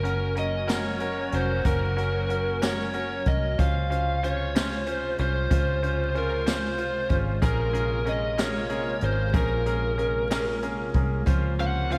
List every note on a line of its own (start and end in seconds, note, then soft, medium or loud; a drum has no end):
0.00 1.29 F#1 loud
0.00 3.54 F#3 medium
0.00 3.54 A#3 medium
0.00 3.54 C#4 medium
0.00 0.30 C#4 medium
0.00 3.54 F#4 medium
0.00 0.30 F#4 medium
0.00 0.33 A#4 medium
0.00 0.30 A#4 medium
0.05 closed hi-hat soft
0.35 0.62 C#4 medium
0.35 0.62 F#4 medium
0.35 0.62 A#4 medium
0.35 0.71 D#5 loud
0.35 closed hi-hat soft
0.67 0.94 C#4 medium
0.67 0.94 F#4 medium
0.67 0.94 A#4 loud
0.67 1.34 C#5 loud
0.67 snare medium
0.67 closed hi-hat medium
1.00 1.26 C#4 medium
1.00 1.26 F#4 medium
1.00 1.26 A#4 medium
1.00 closed hi-hat soft
1.32 1.63 F1 medium
1.32 1.58 C#4 medium
1.32 1.58 F#4 medium
1.32 1.59 A#4 medium
1.32 1.67 C5 medium
1.32 closed hi-hat soft
1.65 3.22 F#1 loud
1.65 1.91 C#4 medium
1.65 1.91 F#4 medium
1.65 1.91 A#4 medium
1.65 2.62 A#4 medium
1.65 kick loud
1.65 closed hi-hat medium
1.97 2.23 C#4 medium
1.97 2.23 F#4 medium
1.97 2.23 A#4 medium
1.97 closed hi-hat soft
2.29 2.55 C#4 medium
2.29 2.55 F#4 medium
2.29 2.55 A#4 medium
2.29 closed hi-hat soft
2.62 2.88 C#4 medium
2.62 2.88 F#4 medium
2.62 2.88 A#4 medium
2.62 3.29 C#5 medium
2.62 snare loud
2.62 closed hi-hat medium
2.93 3.20 C#4 medium
2.93 3.20 F#4 medium
2.93 3.20 A#4 medium
2.93 closed hi-hat soft
3.26 3.57 C2 medium
3.26 3.52 C#4 medium
3.26 3.52 F#4 soft
3.26 3.52 A#4 medium
3.26 3.60 D#5 medium
3.26 kick medium
3.26 closed hi-hat soft
3.58 5.15 C#2 loud
3.58 11.98 C3 medium
3.58 11.98 G#3 medium
3.58 3.84 C#4 medium
3.58 3.85 F4 medium
3.58 11.24 F4 medium
3.58 3.85 C5 medium
3.58 4.26 F5 medium
3.58 kick loud
3.58 closed hi-hat medium
3.90 4.16 C#4 medium
3.90 4.16 F4 medium
3.90 4.17 C5 medium
3.90 closed hi-hat soft
4.23 4.49 C#4 medium
4.23 4.49 F4 medium
4.23 4.49 C5 medium
4.23 4.85 C#5 loud
4.23 closed hi-hat soft
4.55 4.81 C#4 medium
4.55 4.81 F4 medium
4.55 4.81 C5 medium
4.55 snare loud
4.55 closed hi-hat medium
4.85 5.12 C#4 medium
4.85 5.12 F4 medium
4.85 5.15 C5 loud
4.85 5.13 C5 medium
4.85 closed hi-hat soft
5.18 5.49 C2 medium
5.18 5.45 C#4 medium
5.18 5.45 F4 medium
5.18 5.45 C5 medium
5.18 6.18 C5 medium
5.18 closed hi-hat soft
5.50 7.12 C#2 loud
5.50 5.76 C#4 medium
5.50 5.77 F4 medium
5.50 5.77 C5 medium
5.50 kick loud
5.50 closed hi-hat medium
5.83 6.08 C#4 medium
5.83 6.08 F4 medium
5.83 6.09 C5 medium
5.83 closed hi-hat soft
6.15 6.40 C#4 medium
6.15 6.41 F4 medium
6.15 6.49 A#4 medium
6.15 6.41 C5 medium
6.15 closed hi-hat soft
6.46 6.72 C#4 medium
6.46 6.72 F4 medium
6.46 6.72 C5 loud
6.46 7.16 C5 medium
6.46 snare loud
6.46 closed hi-hat medium
6.78 7.04 F4 medium
6.78 7.04 C5 medium
6.78 closed hi-hat soft
7.09 7.40 G#1 medium
7.09 7.35 C#4 medium
7.09 7.36 F4 medium
7.09 7.36 C5 medium
7.09 kick medium
7.09 closed hi-hat soft
7.42 8.98 A#1 loud
7.42 9.32 A#3 medium
7.42 7.67 C#4 medium
7.42 7.68 G#4 medium
7.42 7.68 A#4 medium
7.42 8.09 A#4 medium
7.42 kick loud
7.42 closed hi-hat loud
7.73 7.99 C#4 medium
7.73 7.99 G#4 medium
7.73 7.99 A#4 medium
7.73 closed hi-hat soft
8.05 8.31 C#4 medium
8.05 8.31 G#4 medium
8.05 8.32 A#4 medium
8.05 8.40 D#5 medium
8.05 closed hi-hat soft
8.38 8.63 C#4 medium
8.38 8.63 G#4 medium
8.38 8.64 A#4 medium
8.38 9.04 C#5 medium
8.38 snare loud
8.38 closed hi-hat medium
8.69 8.95 C#4 medium
8.69 8.95 G#4 medium
8.69 8.96 A#4 medium
8.69 closed hi-hat soft
9.01 9.32 G#1 medium
9.01 9.28 C#4 medium
9.01 9.28 G#4 medium
9.01 9.28 A#4 medium
9.01 9.36 C5 medium
9.01 closed hi-hat soft
9.33 10.91 A#1 loud
9.33 11.98 A#3 medium
9.33 9.60 C#4 medium
9.33 9.60 G#4 medium
9.33 9.60 A#4 medium
9.33 10.60 A#4 medium
9.33 kick loud
9.33 closed hi-hat medium
9.66 9.92 C#4 medium
9.66 9.92 G#4 medium
9.66 9.92 A#4 medium
9.66 closed hi-hat soft
9.98 10.24 C#4 medium
9.98 10.24 G#4 medium
9.98 10.24 A#4 medium
9.98 closed hi-hat soft
10.30 10.56 C#4 medium
10.30 10.57 G#4 medium
10.30 10.57 A#4 medium
10.30 snare loud
10.30 closed hi-hat medium
10.62 10.89 C#4 medium
10.62 10.89 G#4 medium
10.62 10.89 A#4 medium
10.62 closed hi-hat soft
10.94 11.25 C2 loud
10.94 11.21 C#4 medium
10.94 11.21 G#4 medium
10.94 11.21 A#4 medium
10.94 kick medium
10.94 closed hi-hat medium
11.26 11.98 C#2 loud
11.26 11.98 F3 medium
11.26 11.53 C#4 medium
11.26 11.53 F4 medium
11.26 11.89 F4 medium
11.26 11.53 C5 medium
11.26 kick loud
11.26 closed hi-hat medium
11.59 11.98 C4 medium
11.59 11.85 C#4 medium
11.59 11.85 F4 medium
11.59 11.85 C5 medium
11.59 11.92 F#5 loud
11.59 closed hi-hat soft
11.90 11.98 C#4 medium
11.90 11.98 F4 medium
11.90 11.98 C5 medium
11.90 11.98 F5 loud
11.90 closed hi-hat soft